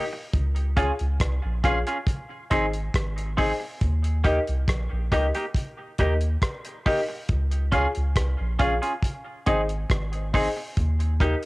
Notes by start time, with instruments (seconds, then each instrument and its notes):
0.13 muted clean electric guitar stroke
0.33 sub bass C#2, kick, closed hi-hat
0.56 closed hi-hat
0.77 clean electric guitar C#4 F4 G#4, upright piano F4 G#4 C#5 F5, kick, closed hi-hat
0.99 sub bass C#2, closed hi-hat
1.20 sub bass C2, kick, cross-stick, closed hi-hat
1.45 sub bass A#1
1.64 sub bass A#1, clean electric guitar C#4 F4 G#4, upright piano F4 G#4 C#5 F5, kick, cross-stick, closed hi-hat
1.87 clean electric guitar C#4 F4 G#4, closed hi-hat
2.07 kick, closed hi-hat
2.50 sub bass G#1, clean electric guitar C4 D#4 G#4, upright piano D#4 G#4 C5 D#5, kick, closed hi-hat
2.73 closed hi-hat
2.94 sub bass G#1, kick, cross-stick, closed hi-hat
3.18 closed hi-hat
3.37 clean electric guitar C4 D#4 G#4, upright piano D#4 G#4 C5 D#5, kick, open hi-hat
3.60 muted clean electric guitar stroke
3.81 sub bass D#2, kick, closed hi-hat
4.04 closed hi-hat
4.24 clean electric guitar A#3 D#4 G4, upright piano D#4 G4 A#4 D#5, kick, closed hi-hat
4.47 sub bass C2, closed hi-hat
4.68 sub bass A#1, kick, cross-stick, closed hi-hat
4.92 sub bass A#1
5.11 sub bass C#2, clean electric guitar A#3 D#4 G4, upright piano D#4 G4 A#4 D#5, kick, cross-stick, closed hi-hat
5.35 clean electric guitar A#3 D#4 G4, closed hi-hat
5.54 kick, closed hi-hat
5.98 sub bass D#2, clean electric guitar A#3 D#4 G4, upright piano D#4 G4 A#4 D#5, kick, closed hi-hat
6.21 closed hi-hat
6.42 kick, cross-stick, closed hi-hat
6.65 closed hi-hat
6.86 clean electric guitar A#3 D#4 G4, upright piano D#4 G4 A#4 D#5, kick, open hi-hat
7.08 muted clean electric guitar stroke
7.29 sub bass C#2, kick, closed hi-hat
7.51 closed hi-hat
7.72 clean electric guitar C#4 F4 G#4, upright piano F4 G#4 C#5 F5, kick, closed hi-hat
7.95 sub bass C#2, closed hi-hat
8.16 sub bass C2, kick, cross-stick, closed hi-hat
8.40 sub bass A#1
8.59 sub bass A#1, clean electric guitar C#4 F4 G#4, upright piano F4 G#4 C#5 F5, kick, closed hi-hat
8.82 clean electric guitar C#4 F4 G#4, closed hi-hat
9.03 kick, closed hi-hat
9.46 sub bass G#1, clean electric guitar C4 D#4 G#4, upright piano D#4 G#4 C5 D#5, kick, closed hi-hat
9.69 closed hi-hat
9.90 sub bass G#1, kick, cross-stick, closed hi-hat
10.13 upright piano C5 D#5, closed hi-hat
10.33 clean electric guitar C4 D#4 G#4, upright piano D#4 G#4 C5 D#5, kick, open hi-hat
10.57 muted clean electric guitar stroke
10.77 sub bass D#2, kick, closed hi-hat
11.00 closed hi-hat
11.20 clean electric guitar A#3 D#4 G4, upright piano D#4 G4 A#4 D#5, kick, closed hi-hat